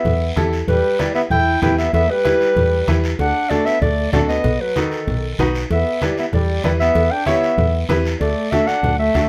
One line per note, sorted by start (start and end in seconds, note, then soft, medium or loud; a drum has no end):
0.00 0.33 B3 medium
0.00 0.33 E5 medium
0.05 0.30 E2 medium
0.05 cowbell medium
0.05 high conga soft
0.05 low conga medium
0.05 long guiro medium
0.36 0.61 E2 medium
0.36 0.58 E4 medium
0.36 0.59 G4 medium
0.36 0.59 A4 medium
0.36 cowbell medium
0.36 high conga medium
0.36 low timbale medium
0.36 short guiro medium
0.53 short guiro medium
0.67 0.80 E2 medium
0.67 1.00 G3 medium
0.67 1.01 B4 loud
0.67 cowbell loud
0.67 high conga soft
0.67 low conga medium
0.67 long guiro medium
0.99 1.14 G3 medium
0.99 1.21 E4 medium
0.99 1.21 G4 medium
0.99 1.22 B4 medium
0.99 1.14 D5 loud
0.99 cowbell medium
0.99 high conga medium
0.99 short guiro medium
1.15 1.22 B3 medium
1.15 1.22 E5 medium
1.15 short guiro medium
1.30 1.55 E2 medium
1.30 1.60 E4 medium
1.30 1.60 G5 loud
1.30 cowbell medium
1.30 high conga soft
1.30 low conga medium
1.30 long guiro medium
1.62 1.87 E2 medium
1.62 1.84 E4 medium
1.62 1.77 E4 medium
1.62 1.84 G4 medium
1.62 1.85 B4 medium
1.62 1.77 G5 loud
1.62 cowbell medium
1.62 high conga medium
1.62 low conga medium
1.62 low timbale medium
1.62 short guiro medium
1.78 1.93 B3 medium
1.78 1.92 E5 medium
1.78 short guiro medium
1.93 2.06 E2 loud
1.93 2.11 B3 medium
1.93 2.12 E5 loud
1.93 cowbell medium
1.93 high conga soft
1.93 long guiro medium
2.10 3.04 G3 medium
2.10 3.04 B4 loud
2.25 2.47 E4 medium
2.25 2.47 G4 medium
2.25 2.47 B4 medium
2.25 cowbell medium
2.25 high conga medium
2.25 short guiro medium
2.41 short guiro medium
2.56 2.81 E2 loud
2.56 cowbell medium
2.56 high conga soft
2.56 low conga medium
2.56 long guiro medium
2.88 3.13 E2 medium
2.88 3.10 E4 medium
2.88 3.10 G4 medium
2.88 3.10 B4 medium
2.88 cowbell medium
2.88 high conga medium
2.88 short guiro medium
3.04 short guiro medium
3.19 3.31 D2 loud
3.19 3.52 D4 medium
3.19 3.51 F#5 loud
3.19 cowbell medium
3.19 high conga soft
3.19 long guiro medium
3.50 3.67 A3 medium
3.50 3.72 D4 medium
3.50 3.72 F#4 medium
3.50 3.72 A4 medium
3.50 3.67 D5 loud
3.50 cowbell medium
3.50 high conga medium
3.50 short guiro medium
3.65 3.81 B3 medium
3.65 3.81 E5 loud
3.65 short guiro medium
3.81 4.07 D2 loud
3.81 4.11 A3 medium
3.81 4.11 D5 loud
3.81 cowbell medium
3.81 high conga soft
3.81 low conga medium
3.81 long guiro medium
4.12 4.38 D2 medium
4.12 4.20 A3 medium
4.12 4.35 D4 medium
4.12 4.35 F#4 medium
4.12 4.35 A4 medium
4.12 4.20 D5 loud
4.12 cowbell medium
4.12 high conga medium
4.12 low conga medium
4.12 low timbale medium
4.12 short guiro medium
4.28 4.62 B3 medium
4.28 4.62 D#5 loud
4.28 short guiro medium
4.44 4.57 B1 loud
4.44 cowbell medium
4.44 high conga soft
4.44 low conga medium
4.44 long guiro medium
4.61 4.78 F#3 medium
4.61 4.79 B4 medium
4.76 5.39 D#3 medium
4.76 4.98 D#4 medium
4.76 4.98 F#4 medium
4.76 5.39 A4 medium
4.76 4.98 B4 medium
4.76 cowbell medium
4.76 high conga medium
4.76 short guiro medium
4.92 short guiro medium
5.07 5.32 B1 loud
5.07 cowbell medium
5.07 high conga soft
5.07 low conga medium
5.07 long guiro medium
5.39 5.64 B1 medium
5.39 5.61 D#4 medium
5.39 5.61 F#4 medium
5.39 5.61 B4 medium
5.39 cowbell medium
5.39 high conga medium
5.39 short guiro medium
5.55 short guiro medium
5.70 5.83 E2 loud
5.70 6.01 B3 medium
5.70 6.00 E5 medium
5.70 cowbell medium
5.70 high conga soft
5.70 long guiro medium
6.01 6.17 G3 medium
6.01 6.23 E4 medium
6.01 6.24 G4 medium
6.01 6.24 B4 medium
6.01 6.17 D5 medium
6.01 cowbell medium
6.01 high conga medium
6.01 short guiro medium
6.18 6.26 B3 medium
6.18 6.26 E5 medium
6.18 short guiro medium
6.33 6.58 E2 medium
6.33 6.63 G3 medium
6.33 6.63 D5 medium
6.33 cowbell medium
6.33 high conga soft
6.33 low conga medium
6.33 long guiro medium
6.64 6.89 E2 medium
6.64 6.72 G3 medium
6.64 6.86 E4 medium
6.64 6.86 G4 medium
6.64 6.86 B4 medium
6.64 6.71 D5 medium
6.64 cowbell medium
6.64 high conga medium
6.64 short guiro medium
6.80 7.14 B3 medium
6.80 7.12 E5 loud
6.80 short guiro medium
6.95 7.08 E2 loud
6.95 cowbell loud
6.95 high conga soft
6.95 long guiro medium
7.11 7.27 D4 medium
7.11 7.26 G5 loud
7.26 7.86 B3 medium
7.26 7.48 E4 medium
7.26 7.49 G4 medium
7.26 7.49 C#5 medium
7.26 7.85 E5 medium
7.26 cowbell medium
7.26 high conga medium
7.26 short guiro medium
7.43 short guiro medium
7.58 7.83 E2 loud
7.58 cowbell medium
7.58 high conga soft
7.58 low conga medium
7.58 long guiro medium
7.89 8.14 E2 medium
7.89 8.11 E4 medium
7.89 8.12 G4 medium
7.89 8.12 B4 loud
7.89 cowbell medium
7.89 high conga loud
7.89 low timbale medium
7.89 short guiro medium
8.05 short guiro medium
8.20 8.33 D2 loud
8.20 8.52 A3 medium
8.20 8.53 D5 loud
8.20 cowbell loud
8.20 high conga soft
8.20 long guiro medium
8.51 8.69 A3 medium
8.51 8.74 D4 medium
8.51 8.74 F#4 medium
8.51 8.74 A4 medium
8.51 8.69 E5 loud
8.51 cowbell medium
8.51 high conga medium
8.51 short guiro medium
8.67 8.98 D4 loud
8.67 8.98 F#5 loud
8.67 short guiro medium
8.83 9.08 D2 loud
8.83 cowbell medium
8.83 high conga soft
8.83 low conga medium
8.83 long guiro medium
8.98 9.28 A3 medium
8.98 9.28 E5 loud
9.15 9.29 D2 medium
9.15 9.29 D4 medium
9.15 9.29 F#4 medium
9.15 9.29 A4 medium
9.15 cowbell medium
9.15 high conga medium
9.15 short guiro medium